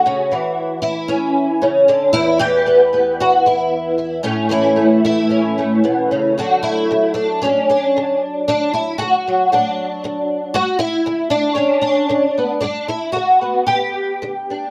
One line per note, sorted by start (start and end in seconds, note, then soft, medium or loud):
0.00 0.81 F#4 medium
0.06 0.32 C#3 medium
0.31 1.88 E3 medium
0.82 1.60 E4 medium
1.08 2.12 C#4 medium
1.62 1.87 C#3 medium
1.88 2.13 D3 medium
2.13 4.19 E2 medium
2.13 2.39 E4 loud
2.39 4.19 E3 medium
2.39 3.17 G4 loud
2.66 2.92 B3 medium
2.93 4.20 B3 medium
3.20 3.45 F#4 loud
3.46 3.97 E4 medium
3.98 4.20 E4 soft
4.23 5.83 A2 medium
4.23 5.02 C#4 medium
4.49 6.35 E3 medium
4.49 5.03 E4 loud
4.76 5.56 A3 soft
5.05 6.38 E4 loud
5.30 6.35 C#4 medium
5.58 6.35 A3 soft
5.84 6.11 B2 medium
6.11 6.38 C#3 medium
6.38 6.85 D2 medium
6.38 6.90 D3 soft
6.38 9.26 F#3 soft
6.38 7.41 A3 soft
6.38 6.62 F#4 medium
6.63 7.14 E4 medium
6.91 7.38 D3 medium
7.14 7.68 D4 medium
7.42 7.91 A2 medium
7.42 8.21 C#4 medium
7.70 8.47 D4 medium
7.97 8.43 D3 medium
8.48 8.96 D2 medium
8.48 8.73 D4 medium
8.73 8.98 E4 medium
8.98 9.48 D3 medium
8.98 9.51 F#4 medium
9.27 10.55 F#3 soft
9.52 9.99 A2 medium
9.52 10.54 D4 medium
10.04 10.50 D3 medium
10.54 11.01 G2 medium
10.54 10.78 F#4 loud
10.79 11.30 E4 loud
11.06 11.52 D3 medium
11.30 11.80 D4 medium
11.55 12.04 D3 medium
11.55 12.34 C#4 medium
11.81 12.59 D4 medium
12.09 12.56 D3 medium
12.38 12.59 B3 soft
12.61 13.09 G2 medium
12.61 12.87 D4 medium
12.88 13.12 E4 medium
13.12 13.62 D3 medium
13.12 13.65 F#4 medium
13.41 14.70 B3 soft
13.67 14.15 D3 medium
13.67 14.70 G4 medium
14.22 14.70 D3 medium
14.50 14.70 D4 soft